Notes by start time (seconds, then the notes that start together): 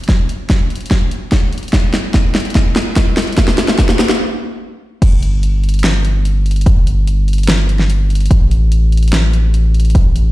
0.04 closed hi-hat
0.09 kick, snare, closed hi-hat
0.29 closed hi-hat
0.50 kick, snare, closed hi-hat
0.70 closed hi-hat
0.75 closed hi-hat
0.81 closed hi-hat
0.86 closed hi-hat
0.91 kick, snare, closed hi-hat
1.11 closed hi-hat
1.32 kick, snare, closed hi-hat
1.53 closed hi-hat
1.58 closed hi-hat
1.63 closed hi-hat
1.68 closed hi-hat
1.73 kick, snare, closed hi-hat
1.94 snare, closed hi-hat
2.14 kick, snare, closed hi-hat
2.35 snare, closed hi-hat
2.40 closed hi-hat
2.45 closed hi-hat
2.50 closed hi-hat
2.55 kick, snare, closed hi-hat
2.76 snare, closed hi-hat
2.96 kick, snare, closed hi-hat
3.17 snare, closed hi-hat
3.22 closed hi-hat
3.27 closed hi-hat
3.32 closed hi-hat
3.37 kick, snare, closed hi-hat
3.48 snare
3.58 snare, closed hi-hat
3.68 snare
3.79 kick, snare, closed hi-hat
3.89 snare
3.99 snare, closed hi-hat
4.04 closed hi-hat
4.09 snare, closed hi-hat
4.15 closed hi-hat
5.02 G1, kick, closed hi-hat, crash
5.23 closed hi-hat
5.43 closed hi-hat
5.64 closed hi-hat
5.69 closed hi-hat
5.74 closed hi-hat
5.79 closed hi-hat
5.84 snare, closed hi-hat
6.05 closed hi-hat
6.25 closed hi-hat
6.46 closed hi-hat
6.51 closed hi-hat
6.56 closed hi-hat
6.61 closed hi-hat
6.66 kick, closed hi-hat
6.87 closed hi-hat
7.07 closed hi-hat
7.28 closed hi-hat
7.33 closed hi-hat
7.38 closed hi-hat
7.43 closed hi-hat
7.48 snare, closed hi-hat
7.69 closed hi-hat
7.79 snare
7.90 closed hi-hat
8.10 closed hi-hat
8.15 closed hi-hat
8.20 closed hi-hat
8.26 closed hi-hat
8.31 A1, kick, closed hi-hat
8.51 closed hi-hat
8.72 closed hi-hat
8.92 closed hi-hat
8.97 closed hi-hat
9.03 closed hi-hat
9.08 closed hi-hat
9.13 snare, closed hi-hat
9.33 closed hi-hat
9.54 closed hi-hat
9.74 closed hi-hat
9.80 closed hi-hat
9.85 closed hi-hat
9.90 closed hi-hat
9.95 kick, closed hi-hat
10.16 closed hi-hat